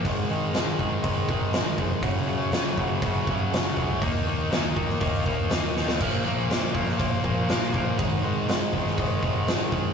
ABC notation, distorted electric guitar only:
X:1
M:4/4
L:1/8
Q:1/4=121
K:Abmix
V:1 name="Distorted electric guitar" clef=bass
[A,,E,A,] [A,,E,A,] [A,,E,A,] [A,,E,A,] [A,,E,A,] [A,,E,A,] [A,,E,A,] [A,,E,A,] | [G,,D,G,] [G,,D,G,] [G,,D,G,] [G,,D,G,] [G,,D,G,] [G,,D,G,] [G,,D,G,] [G,,D,G,] | [E,B,E] [E,B,E] [E,B,E] [E,B,E] [E,B,E] [E,B,E] [E,B,E] [E,B,E] | [B,,F,B,] [B,,F,B,] [B,,F,B,] [B,,F,B,] [B,,F,B,] [B,,F,B,] [B,,F,B,] [B,,F,B,] |
[A,,E,A,] [A,,E,A,] [A,,E,A,] [A,,E,A,] [A,,E,A,] [A,,E,A,] [A,,E,A,] [A,,E,A,] |]